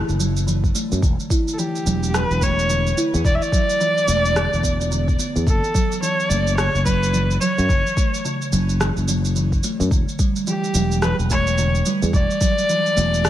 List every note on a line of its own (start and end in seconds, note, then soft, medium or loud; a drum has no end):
0.09 0.70 F#1 medium
0.09 shaker soft
0.19 0.35 F#3 medium
0.19 shaker medium
0.37 shaker soft
0.47 0.74 E3 medium
0.47 shaker soft
0.64 kick medium
0.64 shaker soft
0.75 0.85 A3 medium
0.75 shaker medium
0.92 1.00 F#2 medium
0.92 shaker soft
1.02 1.14 E1 medium
1.02 1.30 D3 medium
1.02 kick loud
1.02 shaker soft
1.20 shaker soft
1.30 1.47 E4 medium
1.30 kick loud
1.30 shaker medium
1.48 shaker soft
1.53 1.60 A4 medium
1.58 1.68 E3 medium
1.58 2.16 G4 medium
1.58 shaker soft
1.76 shaker soft
1.86 2.23 E1 medium
1.86 2.02 F#3 medium
1.86 shaker medium
2.03 shaker soft
2.14 2.41 E3 medium
2.14 2.45 B4 loud
2.14 cross-stick medium
2.14 shaker soft
2.30 2.92 E1 medium
2.30 shaker soft
2.41 2.52 A3 medium
2.41 2.98 C#5 loud
2.41 kick medium
2.41 shaker medium
2.59 shaker soft
2.70 2.96 D3 medium
2.70 shaker soft
2.87 shaker soft
2.97 3.13 E4 medium
2.97 shaker medium
3.14 3.22 E2 medium
3.14 shaker soft
3.25 3.36 E1 medium
3.25 3.35 E3 medium
3.25 3.36 D5 loud
3.25 kick loud
3.25 shaker soft
3.35 3.44 E5 medium
3.42 5.20 D5 loud
3.42 shaker soft
3.52 3.69 F#3 medium
3.52 kick loud
3.52 shaker medium
3.70 shaker soft
3.80 4.07 E3 medium
3.80 shaker soft
3.98 shaker soft
4.08 4.45 E1 medium
4.08 4.18 A3 medium
4.08 shaker medium
4.26 shaker soft
4.36 4.51 D3 medium
4.36 cross-stick medium
4.36 shaker soft
4.53 5.14 E1 medium
4.53 shaker soft
4.64 4.78 B3 medium
4.64 kick medium
4.64 shaker medium
4.80 4.91 B3 medium
4.80 shaker soft
4.91 5.07 D3 medium
4.91 shaker soft
5.08 kick medium
5.08 shaker soft
5.19 5.35 B3 medium
5.19 shaker medium
5.36 5.44 E2 medium
5.36 shaker soft
5.47 5.59 F#1 medium
5.47 5.57 E3 medium
5.47 5.99 A4 loud
5.47 kick loud
5.47 shaker soft
5.64 shaker soft
5.74 5.91 F#3 medium
5.74 kick medium
5.74 shaker medium
5.92 shaker soft
6.02 6.29 E3 medium
6.02 6.31 C#5 medium
6.02 shaker soft
6.20 shaker soft
6.29 6.67 F#1 medium
6.29 6.40 A3 medium
6.29 6.57 D5 medium
6.29 shaker medium
6.47 shaker soft
6.57 6.85 C#3 medium
6.57 6.84 C#5 loud
6.57 cross-stick medium
6.57 shaker soft
6.75 7.36 F#1 medium
6.75 shaker soft
6.85 7.13 F#3 medium
6.85 7.37 B4 loud
6.85 kick medium
6.85 shaker medium
7.03 shaker soft
7.13 7.23 E3 medium
7.13 shaker soft
7.31 shaker soft
7.41 7.57 F#3 medium
7.41 8.48 C#5 medium
7.41 shaker medium
7.58 7.66 F#2 medium
7.58 shaker soft
7.69 7.81 F#1 medium
7.69 7.96 E3 medium
7.69 kick loud
7.69 shaker soft
7.87 shaker soft
7.97 8.07 A3 medium
7.97 kick medium
7.97 shaker medium
8.14 shaker soft
8.25 8.52 C#3 medium
8.25 shaker soft
8.42 shaker soft
8.52 8.89 F#1 medium
8.52 8.79 F#3 medium
8.52 shaker medium
8.69 shaker soft
8.80 8.90 E3 medium
8.80 cross-stick medium
8.80 shaker soft
8.97 9.58 F#1 medium
8.97 shaker soft
9.08 9.24 F#3 medium
9.08 shaker medium
9.25 shaker soft
9.36 9.63 E3 medium
9.36 shaker soft
9.52 kick medium
9.52 shaker soft
9.64 9.73 A3 medium
9.64 shaker medium
9.80 9.88 F#2 medium
9.80 shaker soft
9.91 10.03 E1 medium
9.91 10.18 D3 medium
9.91 kick loud
9.91 shaker soft
10.09 shaker soft
10.19 10.46 G3 medium
10.19 kick medium
10.19 shaker medium
10.36 shaker soft
10.47 10.57 E3 medium
10.47 10.99 G4 medium
10.47 shaker soft
10.64 shaker soft
10.74 11.11 E1 medium
10.74 10.91 F#3 medium
10.74 shaker medium
10.92 shaker soft
11.02 11.29 E3 medium
11.02 11.16 B4 loud
11.02 cross-stick medium
11.02 shaker soft
11.19 11.81 E1 medium
11.19 shaker soft
11.30 11.40 A3 medium
11.30 11.83 C#5 loud
11.30 kick soft
11.30 shaker medium
11.47 shaker soft
11.58 11.85 D3 medium
11.58 shaker soft
11.75 shaker soft
11.86 12.13 G3 medium
11.86 shaker medium
12.02 12.10 E2 medium
12.02 shaker soft
12.13 12.25 E1 medium
12.13 12.23 E3 medium
12.13 13.30 D5 loud
12.13 kick loud
12.13 shaker soft
12.31 shaker soft
12.41 12.58 F#3 medium
12.41 kick medium
12.41 shaker medium
12.58 shaker soft
12.69 12.96 E3 medium
12.69 shaker soft
12.86 shaker soft
12.97 13.30 E1 medium
12.97 13.06 A3 medium
12.97 shaker medium
13.14 shaker soft
13.25 13.30 D3 medium
13.25 cross-stick medium
13.25 shaker soft